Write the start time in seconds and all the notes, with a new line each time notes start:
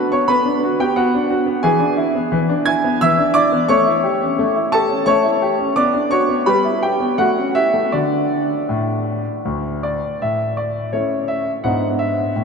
Already playing: F#4
0.12 B3 C#5 C#6
0.28 B3 B4 B5
0.46 D4
0.63 F#4
0.80 B3 G4 G5
0.96 B3 F#4 F#5
1.14 D4
1.31 F#4
1.46 B3
1.63 E3 G#4 G#5
1.80 D4
1.97 E4
2.15 B3
2.32 E3
2.49 D4
2.66 E4 G#5 G#6
2.84 B3
3.01 E3 E5 E6
3.18 D4
3.34 E4 D5 D6
3.52 B3
3.69 A3 C#5 C#6
3.86 E4
4.03 G4
4.21 C#4
4.39 A3
4.56 E4
4.72 G4 A4 A5
4.89 C#4
5.06 A3 C#5 C#6
5.24 E4
5.42 G4
5.59 C#4
5.76 B3 D5 D6
5.94 D4
6.11 F#4 C#5 C#6
6.29 B3
6.46 G3 B4 B5
6.65 E4
6.83 G4 G5
7.00 B3
7.18 A3 F#4 F#5
7.37 C#4
7.55 E4 G4 E5
7.74 A3
7.92 D3 D4 F#4 D5
8.69 A2
9.45 D2
9.83 D5
10.22 A2 E5
10.57 D5
10.93 A3 C#4 E4 C#5
11.28 E5
11.64 G#2 B3 D4 E4 F#5
11.99 E5
12.36 A2